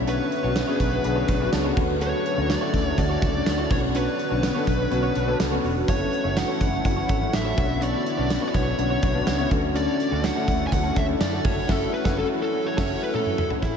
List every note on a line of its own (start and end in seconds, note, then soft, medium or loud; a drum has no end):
0.00 0.18 B1 loud
0.00 5.84 D3 medium
0.00 11.41 F#3 medium
0.00 0.31 B3 medium
0.00 1.75 B3 medium
0.00 0.32 C#4 medium
0.00 0.32 D4 medium
0.00 0.32 F#4 medium
0.00 11.41 F#4 medium
0.00 1.75 C#5 medium
0.07 0.30 D4 medium
0.07 0.30 F#4 medium
0.07 1.49 B4 medium
0.07 0.31 C#5 medium
0.07 closed hi-hat medium
0.31 muted clean electric guitar stroke soft
0.31 closed hi-hat medium
0.43 0.61 B1 medium
0.43 0.63 B3 medium
0.43 0.63 C#4 medium
0.43 0.63 D4 medium
0.43 0.54 D4 medium
0.43 0.55 F#4 medium
0.43 0.63 F#4 medium
0.43 0.56 C#5 medium
0.56 muted clean electric guitar stroke soft
0.56 snare loud
0.56 closed hi-hat loud
0.56 tambourine medium
0.67 0.97 B3 medium
0.67 0.97 C#4 medium
0.67 0.97 D4 medium
0.67 0.78 D4 medium
0.67 0.79 F#4 medium
0.67 0.97 G#4 loud
0.67 0.80 C#5 medium
0.80 0.98 B1 loud
0.80 0.92 E5 medium
0.80 muted clean electric guitar stroke soft
0.80 kick medium
0.80 closed hi-hat medium
0.92 1.04 F#5 medium
0.92 muted clean electric guitar stroke soft
1.04 1.22 B1 loud
1.04 1.33 B3 loud
1.04 1.33 C#4 medium
1.04 1.33 D4 medium
1.04 1.33 G#4 loud
1.04 1.49 A5 medium
1.04 muted clean electric guitar stroke soft
1.04 closed hi-hat medium
1.16 1.27 D4 soft
1.16 1.28 F#4 medium
1.16 1.29 C#5 medium
1.28 1.46 B1 medium
1.28 1.45 D4 medium
1.28 1.40 F#4 medium
1.28 1.39 C#5 medium
1.28 kick loud
1.28 closed hi-hat medium
1.40 1.60 B3 medium
1.40 1.60 C#4 medium
1.40 1.60 D4 medium
1.40 1.60 F#4 loud
1.40 muted clean electric guitar stroke soft
1.52 1.70 C#2 medium
1.52 1.98 A5 medium
1.52 muted clean electric guitar stroke soft
1.52 snare loud
1.52 closed hi-hat medium
1.52 tambourine medium
1.64 1.77 B3 medium
1.64 1.75 C#4 medium
1.64 1.76 D4 medium
1.64 1.75 F#4 medium
1.64 1.76 F#4 loud
1.64 1.77 C#5 medium
1.76 2.12 D2 medium
1.76 2.25 A3 medium
1.76 3.69 A3 medium
1.76 2.25 C#4 medium
1.76 2.25 D4 medium
1.76 1.93 F#4 medium
1.76 2.26 F#4 loud
1.76 1.89 A4 medium
1.76 1.88 C#5 loud
1.76 kick loud
1.76 crash medium
1.89 muted clean electric guitar stroke soft
2.01 2.23 F#4 medium
2.01 2.24 A4 medium
2.01 2.47 C#5 loud
2.01 2.24 C#5 medium
2.01 closed hi-hat loud
2.25 muted clean electric guitar stroke soft
2.25 closed hi-hat medium
2.37 2.55 D2 medium
2.37 2.56 A3 medium
2.37 2.57 C#4 medium
2.37 2.57 D4 medium
2.37 2.57 F#4 medium
2.37 2.48 F#4 soft
2.37 2.49 A4 medium
2.37 2.50 C#5 medium
2.49 2.87 D5 loud
2.49 muted clean electric guitar stroke soft
2.49 snare loud
2.49 closed hi-hat medium
2.49 tambourine medium
2.61 2.90 A3 medium
2.61 2.90 C#4 medium
2.61 2.91 D4 medium
2.61 2.91 E4 medium
2.61 2.72 F#4 medium
2.61 2.73 A4 medium
2.61 2.74 C#5 loud
2.73 2.91 D2 medium
2.73 muted clean electric guitar stroke soft
2.73 kick medium
2.73 closed hi-hat medium
2.86 2.98 C#5 loud
2.86 muted clean electric guitar stroke soft
2.97 3.15 D2 loud
2.97 3.26 A3 medium
2.97 3.27 C#4 medium
2.97 3.27 D4 medium
2.97 3.27 F#4 medium
2.97 3.71 D5 medium
2.97 muted clean electric guitar stroke soft
2.97 kick medium
2.97 closed hi-hat medium
3.10 3.20 F#4 soft
3.10 3.21 A4 medium
3.10 3.22 C#5 medium
3.21 3.40 C#2 medium
3.21 3.38 F#4 medium
3.21 3.34 A4 loud
3.21 3.33 C#5 loud
3.21 kick loud
3.21 closed hi-hat medium
3.34 3.53 A3 medium
3.34 3.53 C#4 medium
3.34 3.53 D4 medium
3.34 3.54 F#4 medium
3.34 muted clean electric guitar stroke medium
3.46 3.64 D2 medium
3.46 muted clean electric guitar stroke soft
3.46 snare loud
3.46 closed hi-hat medium
3.46 tambourine medium
3.58 3.70 A3 medium
3.58 3.69 C#4 medium
3.58 3.69 D4 medium
3.58 3.71 E4 medium
3.58 3.70 F#4 medium
3.58 3.71 A4 medium
3.58 3.71 C#5 medium
3.70 4.06 B1 medium
3.70 4.19 B3 medium
3.70 5.86 B3 medium
3.70 4.19 C#4 medium
3.70 3.87 D4 medium
3.70 4.19 D4 medium
3.70 3.83 F#4 medium
3.70 4.19 F#4 medium
3.70 3.78 C#5 medium
3.70 3.81 C#5 medium
3.70 kick loud
3.70 crash medium
3.82 muted clean electric guitar stroke medium
3.94 4.17 D4 medium
3.94 4.17 F#4 medium
3.94 5.37 B4 medium
3.94 4.18 C#5 loud
3.94 closed hi-hat medium
4.19 muted clean electric guitar stroke soft
4.19 closed hi-hat medium
4.30 4.49 B1 medium
4.30 4.50 B3 medium
4.30 4.50 C#4 medium
4.30 4.50 D4 medium
4.30 4.42 D4 soft
4.30 4.42 F#4 medium
4.30 4.51 F#4 medium
4.30 4.43 C#5 medium
4.43 muted clean electric guitar stroke soft
4.43 snare loud
4.43 closed hi-hat medium
4.43 tambourine medium
4.55 4.84 B3 medium
4.55 4.84 C#4 medium
4.55 4.84 D4 medium
4.55 4.66 D4 medium
4.55 4.66 F#4 medium
4.55 4.84 A4 medium
4.55 4.67 C#5 medium
4.67 4.85 B1 loud
4.67 muted clean electric guitar stroke soft
4.67 kick medium
4.67 closed hi-hat medium
4.79 muted clean electric guitar stroke soft
4.91 5.09 B1 loud
4.91 5.20 B3 medium
4.91 5.20 C#4 medium
4.91 5.20 D4 medium
4.91 5.21 F#4 loud
4.91 muted clean electric guitar stroke soft
4.91 closed hi-hat medium
5.03 5.14 D4 medium
5.03 5.15 F#4 medium
5.03 5.16 C#5 medium
5.15 5.33 B1 medium
5.15 5.28 D4 medium
5.15 5.27 F#4 medium
5.15 5.26 C#5 medium
5.15 closed hi-hat medium
5.27 5.47 B3 medium
5.27 5.47 C#4 medium
5.27 5.47 D4 medium
5.27 5.47 A4 loud
5.27 muted clean electric guitar stroke soft
5.39 5.57 C#2 medium
5.39 muted clean electric guitar stroke soft
5.39 snare loud
5.39 closed hi-hat medium
5.39 tambourine medium
5.51 5.81 B3 medium
5.51 5.81 C#4 medium
5.51 5.81 D4 medium
5.51 5.62 D4 soft
5.51 5.63 F#4 medium
5.51 5.81 F#4 medium
5.51 5.64 C#5 medium
5.64 5.81 E1 medium
5.64 5.80 D4 medium
5.64 5.76 F#4 medium
5.64 5.75 C#5 loud
5.64 open hi-hat medium
5.76 muted clean electric guitar stroke medium
5.88 6.06 F#1 loud
5.88 7.56 E3 medium
5.88 6.17 A3 medium
5.88 7.56 A3 medium
5.88 6.17 C#4 medium
5.88 6.10 E4 medium
5.88 6.17 E4 medium
5.88 9.48 E4 medium
5.88 6.18 F#4 medium
5.88 6.11 A4 medium
5.88 6.39 C#5 medium
5.88 6.11 C#5 loud
5.88 kick loud
5.88 closed hi-hat medium
6.12 muted clean electric guitar stroke soft
6.12 closed hi-hat medium
6.24 6.42 F#1 loud
6.24 6.44 A3 medium
6.24 6.44 C#4 medium
6.24 6.44 E4 medium
6.24 6.35 E4 soft
6.24 6.44 F#4 medium
6.24 6.36 A4 medium
6.24 6.36 C#5 medium
6.36 6.85 F#5 loud
6.36 muted clean electric guitar stroke soft
6.36 snare loud
6.36 closed hi-hat loud
6.36 tambourine medium
6.48 6.77 A3 medium
6.48 6.78 C#4 medium
6.48 6.78 E4 medium
6.48 6.59 E4 medium
6.48 6.78 F#4 medium
6.48 6.60 A4 medium
6.48 6.61 C#5 medium
6.60 6.78 F#1 loud
6.60 muted clean electric guitar stroke soft
6.60 kick medium
6.60 closed hi-hat medium
6.73 muted clean electric guitar stroke soft
6.85 7.02 F#1 loud
6.85 7.14 A3 medium
6.85 7.14 C#4 medium
6.85 7.14 E4 medium
6.85 7.14 F#4 medium
6.85 7.35 F#5 loud
6.85 muted clean electric guitar stroke soft
6.85 kick medium
6.85 closed hi-hat medium
6.97 7.07 E4 medium
6.97 7.09 A4 medium
6.97 7.09 C#5 medium
7.09 7.27 G#1 medium
7.09 7.25 E4 medium
7.09 7.21 A4 medium
7.09 7.20 C#5 medium
7.09 kick loud
7.09 closed hi-hat medium
7.21 7.40 A3 medium
7.21 7.40 C#4 medium
7.21 7.41 E4 medium
7.21 7.41 F#4 medium
7.21 muted clean electric guitar stroke soft
7.33 7.51 A1 loud
7.33 7.79 E5 loud
7.33 muted clean electric guitar stroke soft
7.33 snare loud
7.33 closed hi-hat medium
7.33 tambourine medium
7.45 7.57 A3 medium
7.45 7.56 C#4 medium
7.45 7.58 E4 medium
7.45 7.57 E4 medium
7.45 7.58 F#4 medium
7.45 7.58 A4 medium
7.45 7.58 C#5 medium
7.57 7.93 B1 loud
7.57 9.49 D3 medium
7.57 8.06 B3 medium
7.57 9.49 B3 medium
7.57 8.06 C#4 medium
7.57 7.74 D4 medium
7.57 8.06 D4 medium
7.57 7.64 F4 medium
7.57 7.70 F#4 medium
7.57 7.68 C#5 loud
7.57 kick loud
7.57 closed hi-hat medium
7.64 8.09 F#4 medium
7.69 muted clean electric guitar stroke soft
7.81 8.04 D4 medium
7.81 8.04 F#4 medium
7.81 8.05 C#5 medium
7.81 8.47 D5 medium
7.81 closed hi-hat medium
8.06 muted clean electric guitar stroke soft
8.06 closed hi-hat medium
8.17 8.36 B1 loud
8.17 8.37 B3 medium
8.17 8.37 C#4 medium
8.17 8.37 D4 medium
8.17 8.29 D4 medium
8.17 8.29 F#4 medium
8.17 8.38 F#4 medium
8.17 8.30 C#5 medium
8.30 muted clean electric guitar stroke soft
8.30 snare loud
8.30 closed hi-hat medium
8.30 tambourine medium
8.42 8.71 B3 medium
8.42 8.71 C#4 medium
8.42 8.71 D4 medium
8.42 8.53 D4 medium
8.42 8.71 F#4 medium
8.42 8.54 F#4 medium
8.42 8.54 C#5 medium
8.48 8.55 D5 medium
8.54 8.72 B1 loud
8.54 9.48 C#5 medium
8.54 muted clean electric guitar stroke soft
8.54 kick medium
8.54 closed hi-hat medium
8.66 muted clean electric guitar stroke medium
8.78 8.96 B1 loud
8.78 9.07 B3 medium
8.78 9.07 C#4 medium
8.78 9.08 D4 medium
8.78 9.08 F#4 medium
8.78 muted clean electric guitar stroke soft
8.78 closed hi-hat medium
8.90 9.01 D4 medium
8.90 9.02 F#4 medium
8.90 9.03 C#5 medium
9.02 9.20 B1 medium
9.02 9.19 D4 medium
9.02 9.15 F#4 medium
9.02 9.13 C#5 loud
9.02 kick loud
9.02 closed hi-hat medium
9.14 9.34 B3 loud
9.14 9.34 C#4 medium
9.14 9.34 D4 medium
9.14 9.34 F#4 loud
9.14 muted clean electric guitar stroke medium
9.27 9.45 C#2 loud
9.27 muted clean electric guitar stroke soft
9.27 snare loud
9.27 closed hi-hat medium
9.27 tambourine medium
9.38 9.51 B3 medium
9.38 9.50 C#4 medium
9.38 9.50 D4 medium
9.38 9.51 D4 medium
9.38 9.52 E4 loud
9.38 9.50 F#4 medium
9.38 9.52 C#5 medium
9.51 9.86 D2 loud
9.51 11.43 D3 medium
9.51 9.99 A3 medium
9.51 13.59 A3 medium
9.51 9.67 C#4 medium
9.51 10.00 C#4 medium
9.51 10.00 D4 medium
9.51 9.63 F#4 loud
9.51 10.00 F#4 loud
9.51 9.61 A4 medium
9.51 kick loud
9.51 closed hi-hat medium
9.63 muted clean electric guitar stroke soft
9.74 9.97 C#4 medium
9.74 9.98 F#4 medium
9.74 9.98 A4 medium
9.74 10.26 D5 medium
9.74 closed hi-hat loud
9.99 muted clean electric guitar stroke soft
9.99 closed hi-hat medium
10.11 10.29 D2 loud
10.11 10.31 A3 medium
10.11 10.31 C#4 medium
10.11 10.22 C#4 medium
10.11 10.31 D4 medium
10.11 10.23 F#4 medium
10.11 10.31 F#4 medium
10.11 10.23 A4 medium
10.23 10.67 F#5 loud
10.23 muted clean electric guitar stroke soft
10.23 snare loud
10.23 closed hi-hat loud
10.23 tambourine medium
10.35 10.64 A3 medium
10.35 10.65 C#4 medium
10.35 10.46 C#4 medium
10.35 10.65 D4 medium
10.35 10.65 E4 medium
10.35 10.47 F#4 medium
10.35 10.48 A4 medium
10.47 10.65 D2 loud
10.47 muted clean electric guitar stroke soft
10.47 kick medium
10.47 closed hi-hat medium
10.60 muted clean electric guitar stroke soft
10.67 10.72 G#5 medium
10.72 10.90 D2 loud
10.72 11.01 A3 medium
10.72 11.01 C#4 medium
10.72 11.01 D4 medium
10.72 11.01 F#4 medium
10.72 10.97 F#5 loud
10.72 muted clean electric guitar stroke soft
10.72 kick medium
10.72 closed hi-hat medium
10.83 10.94 C#4 medium
10.83 10.95 F#4 medium
10.83 10.96 A4 medium
10.96 11.14 D2 medium
10.96 11.12 C#4 medium
10.96 11.08 F#4 medium
10.96 11.07 A4 loud
10.96 11.04 E5 loud
10.96 kick loud
10.96 closed hi-hat medium
11.08 11.27 A3 medium
11.08 11.28 C#4 medium
11.08 11.28 D4 medium
11.08 11.28 E4 medium
11.08 muted clean electric guitar stroke soft
11.20 11.38 F#2 medium
11.20 11.45 D5 medium
11.20 muted clean electric guitar stroke soft
11.20 snare loud
11.20 closed hi-hat medium
11.20 tambourine medium
11.32 11.43 A3 medium
11.32 11.43 C#4 medium
11.32 11.43 C#4 soft
11.32 11.45 D4 medium
11.32 11.45 F#4 medium
11.32 11.44 F#4 medium
11.32 11.45 A4 medium
11.44 11.62 F#1 loud
11.44 13.60 E3 medium
11.44 13.60 F#3 medium
11.44 11.67 A3 medium
11.44 11.61 C#4 medium
11.44 11.67 C#4 medium
11.44 11.57 E4 loud
11.44 11.68 E4 medium
11.44 13.60 F#4 medium
11.44 11.68 F#4 medium
11.44 11.55 A4 medium
11.44 11.70 C#5 medium
11.44 kick loud
11.44 crash medium
11.56 muted clean electric guitar stroke medium
11.68 11.85 F#1 loud
11.68 11.85 A3 loud
11.68 11.85 C#4 loud
11.68 11.86 E4 loud
11.68 11.86 F#4 loud
11.68 11.93 A4 medium
11.68 11.86 A4 loud
11.68 kick loud
11.68 snare loud
11.68 crash medium
11.94 12.18 B4 medium
12.05 12.22 F#1 loud
12.05 12.22 A3 loud
12.05 12.22 C#4 loud
12.05 12.22 E4 medium
12.05 12.22 E4 loud
12.05 12.22 F#4 loud
12.05 12.21 A4 loud
12.05 kick loud
12.05 snare loud
12.18 12.25 A4 medium
12.43 12.67 A4 medium
12.66 13.00 C#5 medium
12.77 12.94 F#1 loud
12.77 12.94 A3 loud
12.77 12.94 C#4 loud
12.77 12.95 C#4 medium
12.77 12.95 E4 loud
12.77 12.95 E4 medium
12.77 12.95 F#4 loud
12.77 12.94 A4 loud
12.77 kick loud
12.77 snare loud
12.77 crash medium
13.03 13.14 B4 medium
13.14 13.48 A4 medium
13.14 high tom medium
13.26 mid tom medium
13.38 mid tom loud
13.50 floor tom loud
13.62 13.77 A1 medium
13.62 13.77 A3 medium
13.62 13.77 C#4 medium
13.62 13.77 E4 medium
13.62 13.77 G#4 medium
13.62 kick medium
13.62 closed hi-hat medium